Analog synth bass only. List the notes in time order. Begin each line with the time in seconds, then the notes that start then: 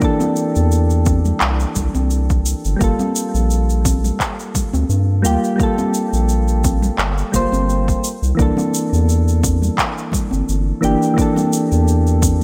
0.57 E2
1.42 C2
1.76 C2
1.95 C2
2.65 G1
2.81 G1
3.34 A#1
4.74 D2
4.89 G2
5.24 D2
6.13 A#1
6.99 G1
7.34 G1
7.53 G1
8.22 C2
8.39 C2
8.93 E2
10.33 G1
10.49 G1
10.84 G1
11.72 E2